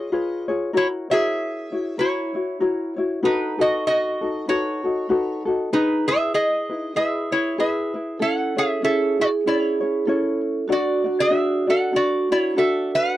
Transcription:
Already playing: F4 G#4 C#5 D#5
0.12 F4 G#4 B4 C#5
0.48 F4 G#4 C#5
0.73 E4 F#4 A#4 C#5
1.10 E4 F#4 G#4 A#4 C#5 E5
1.72 E4 F#4 C#5
1.98 E4 F#4 A#4 C#5
2.34 E4 F#4 C#5
2.60 E4 F#4 A#4 C#5
2.96 E4 F#4 C#5
3.23 D#4 F#4 A4 B4
3.59 D#4 F#4 A4 B4 D#5
3.87 F#4 D#5
4.21 D#4 F#4 A4
4.47 D#4 F#4 A4 B4 C#5
4.84 D#4 F#4 A4
5.09 D#4 F#4 A4 B4
5.45 D#4 F#4 A4
5.73 D#4 G#4 B4
6.08 E4 G#4 B4 E5
6.34 G#4 D#5
6.70 D#4 E4 B4
6.96 E4 G#4 B4 E5
7.31 E4 B4 C#5
7.58 E4 G#4 B4 E5
7.94 E4 B4
8.19 C#4 E4 A4 C#5 F#5
8.57 C#4 E4 G#4 C#5 E5
8.82 C#4 E4 G#4 A4 C#5 E5
9.19 E4 F#4 D5
9.46 C#4 E4 C#5
9.81 C#4 E4 C#5
10.06 C#4 E4 A4 C#5
10.68 D4 F#4 A4 D5
10.72 F#4 D5
11.04 D4 F#4 D5
11.20 G#4 E5
11.31 D4 F#4 D5
11.67 D4 F#4 A4 D5 F#5
11.93 D4 F#4 A4 D5
12.31 D4 E4 F#4 C#5
12.56 D4 F#4 A4 D5 E5
12.95 B4 F#5

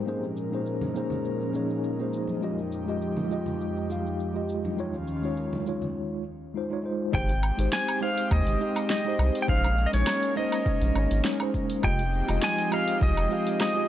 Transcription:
Already playing: G#3
0.06 A#2 F3 A#3 C#4 D#4 G#4 A#4 C5, shaker
0.23 shaker
0.37 shaker
0.52 A#3 C#4 D#4 G#4 C5, shaker
0.66 shaker
0.81 high bongo, high conga, low conga, shaker
0.94 A#3 C#4 D#4 G#4 C5, shaker
1.10 low conga, shaker
1.25 shaker
1.41 shaker
1.53 A#3 C#4 D#4 G#4 C#5, high conga, shaker
1.70 shaker
1.84 shaker
1.98 A#3 C#4 D#4 G#4 C5, shaker
2.13 shaker
2.27 high conga, shaker
2.41 F2 G#3 F4 G4 D#5, shaker
2.58 shaker
2.72 shaker
2.86 G#3 F4 G4 D#5, shaker
3.02 shaker
3.17 high bongo, high conga, low conga, shaker
3.30 G#3 F4 G4 D#5, shaker
3.46 low conga, shaker
3.61 shaker
3.77 shaker
3.89 G#3 F4 G4 F5, high conga, shaker
4.06 shaker
4.20 shaker
4.33 G#3 F4 G4 D#5, shaker
4.49 shaker
4.65 high bongo, high conga, shaker
4.77 D#2 D#3 G#3 C#4 D#4 F4 C#5, shaker
4.94 shaker
5.07 shaker
5.22 G#3 D#4 F4 C#5, shaker
5.37 shaker
5.53 high bongo, high conga, low conga, shaker
5.66 G#3 D#4 F4 C#5, shaker
5.82 low conga, shaker
6.54 G#3 D#4 F4 C5
6.70 G#3 D#4 F4 C#5
6.83 G#3 D#4 F4 C5
7.12 G#1 G#3 C4 D#4 G4 C5 G5, kick, shaker
7.29 open hi-hat, shaker
7.43 low woodblock, shaker
7.57 G#1 G#3 D#4 G4 C5, open hi-hat, shaker
7.73 G#5, snare, shaker
7.88 open hi-hat, low woodblock, shaker
8.01 G#3 D#4 G4 C5 F5, shaker
8.18 open hi-hat, shaker
8.31 D#2 D#5, kick, low woodblock, shaker
8.46 G#1, open hi-hat, shaker
8.60 G#3 D#4 G4 D#5, shaker
8.76 open hi-hat, low woodblock, shaker
8.90 D#5, snare, shaker
9.05 G#3 D#4 G4 C5, shaker
9.19 C2, low woodblock, shaker
9.35 open hi-hat, shaker
9.42 G5
9.48 A#1 G#3 A#3 C#4 D#4 C5 F5, kick, shaker
9.64 open hi-hat, low woodblock, shaker
9.78 shaker
9.86 D#5
9.93 A#1 G#3 C#4 D#4 C#5, open hi-hat, shaker
10.07 snare, low woodblock, shaker
10.23 open hi-hat, shaker
10.36 G#3 C#4 D#4 C5 D#5, shaker
10.52 open hi-hat, low woodblock, shaker
10.66 kick, shaker
10.81 A#1, open hi-hat, shaker
10.95 G#1 G#3 C#4 D#4 C#5, low woodblock, shaker
11.11 G#1, open hi-hat, shaker
11.25 snare, shaker
11.40 G#3 C#4 D#4 C5, low woodblock, shaker
11.54 kick, shaker
11.70 open hi-hat, shaker
11.82 F1 F3 G#3 C4 D#4 F4 G4 D#5 G5, kick, low woodblock, shaker
11.99 open hi-hat, shaker
12.13 shaker
12.27 F1 G#3 F4 G4 D#5, open hi-hat, low woodblock, shaker
12.42 G#5, snare, shaker
12.58 open hi-hat, shaker
12.70 G#3 F4 G4 D#5 F5, low woodblock, shaker
12.88 open hi-hat, shaker
13.01 C2 D#5, kick, shaker
13.17 F1, open hi-hat, low woodblock, shaker
13.29 G#3 F4 G4 F5, shaker
13.47 open hi-hat, shaker
13.61 D#5, snare, low woodblock, shaker
13.74 G#3 F4 G4 D#5, shaker

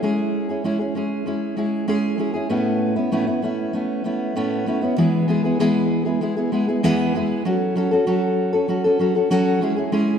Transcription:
0.02 G#3 C#4 E4 G#4
0.49 C#4 E4 G#4
0.64 G#3 C#4 E4 G#4
0.79 C#4 E4 G#4
0.95 G#3 C#4 E4 G#4
1.26 G#3 C#4 E4 G#4
1.57 G#3 C#4 E4 G#4
1.88 G#3 C#4 E4 G#4
2.18 G#3 C#4 E4 G#4
2.34 C#4 E4 G#4
2.49 A2 A3 B3 C#4 E4
2.96 B3 C#4 E4
3.12 A2 A3 B3 C#4 E4
3.27 B3 C#4 E4
3.42 A3 B3 C#4 E4
3.73 A3 B3 C#4 E4
4.04 A3 B3 C#4 E4
4.36 A2 A3 B3 C#4 E4
4.66 A3 B3 C#4 E4
4.82 B3 C#4 E4
4.97 E2 E3 G#3 B3 E4 G#4
5.28 G#3 B3 E4 G#4
5.44 G#3 B3 E4 G#4
5.59 E2 E3 G#3 B3 E4 G#4
6.05 G#3 B3 E4 G#4
6.21 G#3 B3 E4 G#4
6.37 G#3 B3 E4 G#4
6.52 G#3 B3 E4 G#4
6.68 G#3 B3 E4 G#4
6.83 E2 E3 G#3 B3 E4 G#4
7.15 G#3 B3 E4 G#4
7.45 F#3 C#4 F#4 A4
7.75 F#3 C#4 F#4 A4
7.91 C#4 F#4 A4
8.07 F#3 C#4 F#4 A4
8.53 C#4 F#4 A4
8.68 F#3 C#4 F#4 A4
8.84 C#4 F#4 A4
8.99 F#3 C#4 F#4 A4
9.15 C#4 F#4 A4
9.30 F#3 C#4 F#4 A4
9.61 G#3 C#4 E4 G#4
9.76 C#4 E4 G#4
9.92 G#3 C#4 E4 G#4

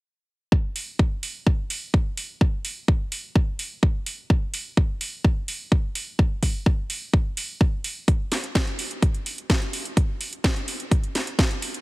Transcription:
0.52 kick
0.76 open hi-hat
0.99 kick
1.23 open hi-hat
1.47 kick
1.70 open hi-hat
1.94 kick
2.17 open hi-hat
2.41 kick
2.65 open hi-hat
2.88 kick
3.12 open hi-hat
3.35 kick
3.59 open hi-hat
3.83 kick
4.06 open hi-hat
4.30 kick
4.54 open hi-hat
4.77 kick
5.01 open hi-hat
5.24 kick
5.48 open hi-hat
5.72 kick
5.95 open hi-hat
6.19 kick
6.43 kick, open hi-hat
6.66 kick
6.90 open hi-hat
7.13 kick
7.37 open hi-hat
7.61 kick
7.84 open hi-hat
8.08 kick, closed hi-hat
8.32 snare, open hi-hat
8.44 closed hi-hat
8.55 kick, snare, closed hi-hat
8.67 closed hi-hat
8.79 open hi-hat
8.91 closed hi-hat
9.02 kick, closed hi-hat
9.14 closed hi-hat
9.26 open hi-hat
9.38 closed hi-hat
9.50 kick, snare, closed hi-hat
9.62 closed hi-hat
9.73 open hi-hat
9.85 closed hi-hat
9.97 kick, closed hi-hat
10.21 open hi-hat
10.33 closed hi-hat
10.44 kick, snare, closed hi-hat
10.56 closed hi-hat
10.68 open hi-hat
10.80 closed hi-hat
10.91 kick, closed hi-hat
11.04 closed hi-hat
11.15 snare, open hi-hat
11.27 closed hi-hat
11.39 kick, snare, closed hi-hat
11.51 closed hi-hat
11.62 open hi-hat
11.74 closed hi-hat

